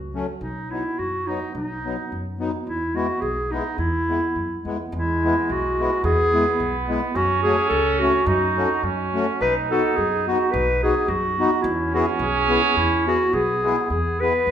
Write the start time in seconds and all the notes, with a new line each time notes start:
Already playing: C#2 F#4
0.14 F#3 A3 C#4
0.41 B1 D#4
0.70 F#3 B3 D#4 E4
0.99 F#2 F#4
1.27 F#3 B3 D#4
1.55 B1 D#4
1.85 F#3 B3 D#4
2.12 F#2
2.39 F#3 B3 D#4
2.67 E2 E4
2.95 G#3 B3 E4 F#4
3.21 B1 G#4
3.51 G#3 B3 D#4 E4
3.78 E2 E4
4.08 G#3 B3 E4
4.35 F#2
4.65 E2 G#3 B3 E4
4.92 E2 G#3
4.96 E4
5.23 G#3 B3 E4
5.49 B1 F#4
5.79 G#3 B3 E4
6.04 E2 B3 G#4
6.33 G#3 B3 E4
6.60 B1
6.88 G#3 B3 E4
7.14 F#2 C#4 F#4
7.43 A3 C#4 F#4 G#4
7.69 C#2 A4
7.99 A3 C#4 F#4
8.26 F#2 D#4 F#4
8.57 A3 C#4 F#4
8.83 F#2 C#4
9.14 A3 C#4 F#4
9.41 B1 D#4 B4
9.71 B3 D#4 F#4 A4
9.97 F#2 G#4
10.27 B3 D#4 F#4
10.52 B1 B4
10.82 B3 D#4 F#4 G#4
11.08 F#2 F#4
11.38 B3 D#4 F#4
11.62 E2 C#4 E4
11.94 B3 E4 F#4 G#4
12.18 B1 G#4
12.49 B3 E4 G#4
12.77 E2 E4
13.06 B3 E4 F#4 G#4
13.33 B1 B3 G#4
13.64 G#3 B3 E4 G#4
13.90 E2 B3 G#4
14.20 B3 E4 G#4 B4
14.47 E2